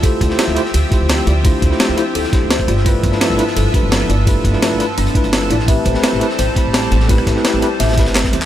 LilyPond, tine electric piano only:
\new Staff \with { instrumentName = "Tine electric piano" } { \time 4/4 \key d \dorian \tempo 4 = 170 <a e' f' g' c''>8. <a e' f' g' c''>8. <a e' f' g' c''>16 r8. <a e' f' g' c''>4 <a e' f' g' d''>16 r16 | <a e' f' g' c''>8. <a e' f' g' c''>8. <a e' f' g' c''>16 r8. <f a e' g' c''>4 <a e' f' g' d''>16 r16 | <a d' e' f' b'>8. <a d' e' f' b'>8. <a d' e' f' b'>16 r8. <f a d' e' b'>4 <a d' e' f' d''>16 r16 | <a d' e' f' b'>8. <a d' e' f' b'>8. <a d' e' f' b'>16 r8. <a d' e' f' b'>4 <a d' e' f' d''>16 r16 |
<a c' e' g' b'>8. <a c' e' g' b'>8. <a c' e' g' b'>16 r8. <a c' e' g' b''>4 <a c' e' g' c''>16 r16 | <a c' e' g' b'>8. <a c' e' g' b'>8. <a c' e' g' b'>16 r8. <a c' e' g' b'>4 <a c' e' g' c''>16 r16 | }